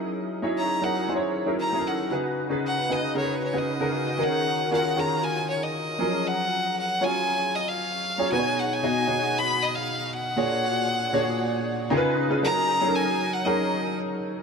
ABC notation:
X:1
M:4/4
L:1/16
Q:1/4=116
K:F#
V:1 name="Violin"
z4 a2 f2 z4 a2 f2 | z4 f2 d2 c2 c d4- d | f4 f2 a2 g2 c d4- d | f4 f2 g4 d e4- e |
g2 f g4- g b2 d e3 f2- | f12 z4 | a4 g3 f d4 z4 |]
V:2 name="Grand piano"
[F,CD=EGA]3 [F,CDEGc]3 [F,CDEGA]2 [F,CDEG^Bc]3 [F,CDEGA]2 [F,CDEG=A^A]3 | [C,DFGB]3 [C,DFGB]3 [C,DFGB]2 [C,DFGAB]3 [C,DFGB]2 [C,DFGA]3 | [D,CDFGA]4 [D,CEFGA]2 [D,CEFGA]8 [E,F,CGA]2- | [E,F,CGA]6 [F,CEGc]8 z [F,CEGc] |
[B,,DFGBc]4 [B,,DFGd]2 [B,,DFGc]8 z2 | [A,,=DFGc]6 [A,,DFGc]6 [C,^DEGAB]3 [C,DEGB] | [F,CDGA]3 [F,CDG=A^A]4- [F,CDG=A^A] [F,CDGA]8 |]